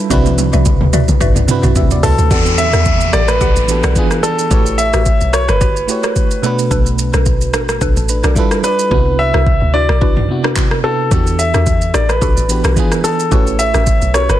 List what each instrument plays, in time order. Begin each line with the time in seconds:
Already playing: fm electric piano G3 D4 E4 F4 A4 B4
0.10 log drum bass C2, fm electric piano C3 C4 D4 E4 F#4 B4, synth pluck F#4 B4 D5 E5, kick, high tom, shaker
0.26 high tom, shaker
0.38 high tom, shaker
0.53 log drum bass C2, synth pluck F#4 B4 D5 E5, high tom, shaker
0.65 kick, mid tom, shaker
0.81 log drum bass D2, mid tom
0.93 synth pluck F#4 B4 D5 E5, mid tom, shaker
1.08 log drum bass B1, mid tom, shaker
1.20 log drum bass B1, synth pluck F#4 B4 D5 E5, kick, mid tom, shaker
1.36 log drum bass C2, mid tom, shaker
1.47 fm electric piano C3 C4 D4 E4 F#4 B4, mid tom, shaker
1.63 log drum bass B1, synth pluck F#4 B4 D5 E5, mid tom, shaker
1.76 log drum bass B1, fm electric piano G4 E5, kick, floor tom, shaker
1.91 fm electric piano F#4 D5, floor tom, shaker
2.03 log drum bass C2, fm electric piano E4 C5, synth pluck F#4 B4 D5 E5, grand piano A4, floor tom, open hi-hat, shaker
2.18 log drum bass D2, fm electric piano D4 B4, floor tom, shaker
2.30 log drum bass E2, fm electric piano E3 B3 D4 F#4 G4 A4, synth pluck G4 A4 D5 F#5, kick, downlifter, shaker
2.46 shaker
2.58 grand piano E5, shaker
2.73 log drum bass E2, synth pluck G4 A4 D5 F#5, cross-stick, shaker
2.85 kick, shaker
3.01 shaker
3.13 log drum bass A1, synth pluck G4 A4 D5 F#5, grand piano D5, cross-stick, shaker
3.28 grand piano B4, cross-stick, shaker
3.41 log drum bass B1, synth pluck G4 A4 D5 F#5, kick, shaker
3.56 log drum bass A1, shaker
3.67 fm electric piano E3 B3 D4 F#4 G4 A4, shaker
3.83 log drum bass B1, synth pluck G4 A4 D5 F#5, cross-stick, shaker
3.95 fm electric piano E3 B3 D4 F4 G#4, kick, shaker
4.11 cross-stick, shaker
4.22 fm electric piano E3 B3 D4 F4 G#4, synth pluck F4 G#4 D5, grand piano A4, shaker
4.39 shaker
4.50 log drum bass A1, fm electric piano A3 E4 F#4 G4 B4 C#5, synth pluck F#4 G4 B4 C#5, kick, shaker
4.66 shaker
4.78 grand piano E5, shaker
4.93 log drum bass A1, synth pluck F#4 G4 B4 C#5, cross-stick, shaker
5.06 kick, shaker
5.21 log drum bass B1, shaker
5.33 synth pluck F#4 G4 B4 C#5, grand piano C#5, cross-stick, shaker
5.48 log drum bass G1, grand piano B4, cross-stick, shaker
5.61 synth pluck F#4 G4 B4 C#5, kick, shaker
5.77 shaker
5.87 fm electric piano A3 E4 F#4 G4 B4 C#5, shaker
6.03 synth pluck F#4 G4 B4 C#5, cross-stick, shaker
6.16 kick, shaker
6.31 shaker
6.42 fm electric piano B2 A3 D4 F#4 B4, synth pluck D4 A4 B4, shaker
6.59 shaker
6.71 log drum bass B1, synth pluck D4 A4 B4, kick, shaker
6.86 shaker
6.99 shaker
7.13 log drum bass B1, synth pluck D4 A4 B4, cross-stick, shaker
7.26 kick, shaker
7.41 shaker
7.53 log drum bass A1, synth pluck D4 A4 B4, cross-stick, shaker
7.69 cross-stick, shaker
7.81 log drum bass B1, synth pluck D4 A4 B4, kick, shaker
7.96 log drum bass A1, fm electric piano A4, shaker
8.09 fm electric piano D4 B4, shaker
8.24 log drum bass B1, synth pluck D4 A4 B4, fm electric piano F#4 D5, cross-stick, shaker
8.35 fm electric piano G3 D4 E4 F4 A4 B4, kick, shaker
8.51 cross-stick, shaker
8.63 fm electric piano G3 D4 E4 F4 A4 D5, synth pluck E4 F4 A4 B4, grand piano B4, shaker
8.79 shaker
8.90 log drum bass C2, fm electric piano C3 B3 D4 E4 F#4, synth pluck D4 E4 F#4 B4, kick
9.19 grand piano E5
9.34 log drum bass C2, synth pluck D4 E4 F#4 B4, cross-stick
9.46 kick
9.62 log drum bass D2
9.74 synth pluck D4 E4 F#4 B4, grand piano D5
9.89 log drum bass B1, cross-stick
10.01 synth pluck D4 E4 F#4 B4, kick
10.17 mid tom
10.28 fm electric piano C3 B3 D4 E4 F#4
10.44 synth pluck D4 E4 F#4 B4, cross-stick
10.56 kick, clap
10.71 cross-stick
10.83 fm electric piano C3 B3 D4 E4 F#4, synth pluck D4 E4 F#4 B4, grand piano A4
11.11 log drum bass E2, fm electric piano E3 B3 D4 F#4 G4 A4, synth pluck D4 F#4 G4 A4, kick, shaker
11.27 shaker
11.39 grand piano E5, shaker
11.54 log drum bass E2, synth pluck D4 F#4 G4 A4, cross-stick, shaker
11.66 kick, shaker
11.81 shaker
11.94 log drum bass A1, synth pluck D4 F#4 G4 A4, grand piano D5, cross-stick, shaker
12.09 grand piano B4, cross-stick, shaker
12.21 log drum bass B1, synth pluck D4 F#4 G4 A4, kick, shaker
12.37 log drum bass A1, shaker
12.48 fm electric piano E3 B3 D4 F#4 G4 B4, shaker
12.64 log drum bass B1, synth pluck D4 F#4 G4 A4, cross-stick, shaker
12.76 fm electric piano E3 B3 D4 F4 G#4, kick, shaker
12.92 cross-stick, shaker
13.03 fm electric piano E3 B3 D4 F4 G#4, synth pluck D4 F4 G#4, grand piano A4, shaker
13.19 shaker
13.31 log drum bass A1, fm electric piano A3 E4 F#4 G4 B4 C#5, synth pluck C#4 F#4 G4 B4, kick, shaker
13.47 shaker
13.59 grand piano E5, shaker
13.74 log drum bass A1, synth pluck C#4 F#4 G4 B4, cross-stick, shaker
13.87 kick, shaker
14.02 log drum bass B1, shaker
14.14 synth pluck C#4 F#4 G4 B4, grand piano C#5, cross-stick, shaker
14.29 log drum bass G1, grand piano B4, cross-stick, shaker